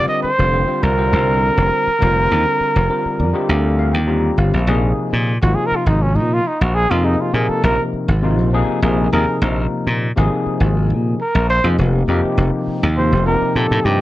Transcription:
Already playing: D3 G3 C4 F4 A#4
0.08 D#5
0.22 C5, muted slap bass stroke
0.38 F1 D3 G3 C4 F4 G4
0.52 D3 G3 C4 F4 C5
0.67 D3 G3 C4 F4 C5
0.83 C2 A#4
0.97 D3 G3 C4 F4 C5
1.13 C2
1.57 F1
1.87 muted slap bass stroke
1.99 F1 D3 G3 C4 F4 C5
2.31 D#2
2.60 muted slap bass stroke
2.76 F1
2.89 D3 G3 C4 F4 A#4
3.06 muted slap bass stroke
3.20 F2 D5
3.33 D3 G3 C4 F4 G4 D#5
3.49 D2 F5
3.79 F5
3.93 D#2 G5
4.07 D3 G3 C4 F4 G4 A#5
4.38 G1 F5
4.54 A#1
4.67 A#1 C3 F3 A#3 D#4 G#4
5.13 A#2
5.42 G#1 C3 F3 A#3 D#4 F4 F#4
5.55 G#4
5.66 A#4
5.72 muted slap bass stroke
5.76 F4
5.86 G#1 D#4
6.02 C#4
6.15 A#2 D#4
6.33 F4
6.47 D#4
6.61 A#1 F#4
6.74 G#4
6.89 F2 C3 F3 A#3 D#4 F4 A#4
7.03 C3 F3 A#3 D#4 G#4
7.21 F4
7.33 A#2 C3 F3 A#3 D#4 G#4 A#4
7.49 A4, muted slap bass stroke
7.64 A#1 A#4
7.93 muted slap bass stroke
8.08 G#1
8.22 C3 F3 A#3 D#4 F4
8.38 A#1
8.53 C3 F3 A#3 D#4 G#4
8.68 muted slap bass stroke
8.82 A#1 C3 F3 A#3 D#4 G#4 A#4
9.12 D#2 C3 F3 A#3 D#4 G#4 A#4
9.41 A#1 C3 F3 A#3 D#4 A#4
9.87 A#2
10.16 G#1 C3 F3 A#3 D#4 G#4
10.46 muted slap bass stroke
10.60 G#1
10.90 A#2
11.21 A#4
11.35 A#1
11.50 C5
11.64 F2 C3 F3 A#3 D#4 G#4
11.78 F1 C3 F3 A#3 D#4 G4
12.08 F2 C3 F3 A#3 D#4 G4
12.24 muted slap bass stroke
12.37 F1
12.68 muted slap bass stroke
12.83 D#2
12.96 C3 F3 A#3 D#4 G4 C5
13.12 F1
13.26 C3 F3 A#3 D#4 G4 A#4
13.42 muted slap bass stroke
13.56 A#2 C3 F3 A#3 D#4 G4 A4
13.71 A2
13.85 G2 C3 F3 A#3 D#4 G4

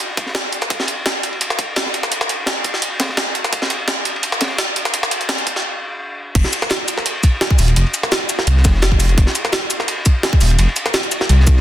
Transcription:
0.17 kick, closed hi-hat, ride
0.26 snare
0.35 snare, closed hi-hat, ride
0.44 snare
0.52 closed hi-hat, ride
0.61 snare, closed hi-hat, ride
0.70 kick, closed hi-hat, ride
0.80 snare
0.87 closed hi-hat, ride
1.06 snare, closed hi-hat, ride
1.23 closed hi-hat, ride
1.33 ride
1.41 closed hi-hat, ride
1.50 snare
1.59 kick, closed hi-hat, ride
1.76 snare, closed hi-hat, ride
1.86 snare
1.94 closed hi-hat, ride
2.03 snare, closed hi-hat, ride
2.12 closed hi-hat, ride
2.21 snare, ride
2.29 closed hi-hat, ride
2.46 snare, closed hi-hat, ride
2.64 kick, closed hi-hat, ride
2.74 snare
2.82 closed hi-hat, ride
3.00 kick, snare, closed hi-hat, ride
3.09 snare
3.17 snare, closed hi-hat, ride
3.26 snare
3.35 closed hi-hat, ride
3.44 snare, closed hi-hat, ride
3.53 kick, closed hi-hat, ride
3.62 snare
3.70 closed hi-hat, ride
3.88 snare, closed hi-hat, ride
4.05 closed hi-hat, ride
4.16 ride
4.23 closed hi-hat, ride
4.32 snare
4.41 kick, snare, closed hi-hat, ride
4.58 snare, closed hi-hat
4.68 ride
4.76 closed hi-hat, ride
4.85 snare, closed hi-hat
4.93 closed hi-hat, ride
5.03 snare, ride
5.11 closed hi-hat, ride
5.21 closed hi-hat
5.29 snare, closed hi-hat, ride
5.38 closed hi-hat
5.46 kick, closed hi-hat, ride
5.56 snare
6.35 F1, kick, closed hi-hat, crash, ride
6.44 snare
6.53 closed hi-hat, ride, shaker
6.62 snare
6.70 snare, closed hi-hat, ride, shaker
6.88 closed hi-hat, ride, shaker
6.98 snare, ride
7.06 closed hi-hat, ride
7.23 kick, closed hi-hat, ride, shaker
7.41 snare, closed hi-hat, ride
7.50 kick, snare
7.59 D#1, open hi-hat, ride, shaker
7.68 closed hi-hat, ride
7.76 F1, closed hi-hat, ride
7.86 ride
7.94 closed hi-hat, ride, shaker
8.03 snare
8.12 snare, closed hi-hat, ride, shaker
8.29 closed hi-hat, ride, shaker
8.39 snare
8.47 C2, closed hi-hat, ride
8.57 snare
8.64 F1, kick, snare, closed hi-hat, ride, shaker
8.74 snare
8.82 snare, closed hi-hat, ride
8.91 kick, snare
9.00 open hi-hat, ride, shaker
9.09 closed hi-hat, ride
9.18 F1, kick, closed hi-hat, ride
9.27 snare
9.35 closed hi-hat, ride, shaker
9.45 snare
9.52 snare, closed hi-hat, ride, shaker
9.70 closed hi-hat, ride, shaker
9.80 snare, ride
9.88 closed hi-hat, ride
10.06 kick, closed hi-hat, ride, shaker
10.23 snare, closed hi-hat, ride
10.33 kick, snare
10.41 D#1, open hi-hat, ride, shaker
10.50 closed hi-hat, ride
10.59 F1, closed hi-hat, ride
10.69 ride
10.76 closed hi-hat, ride, shaker
10.86 snare, closed hi-hat
10.94 snare, closed hi-hat, ride, shaker
11.03 closed hi-hat
11.12 closed hi-hat, ride, shaker
11.21 snare
11.29 C2, closed hi-hat, ride
11.40 snare
11.47 kick, closed hi-hat, ride, shaker
11.57 snare

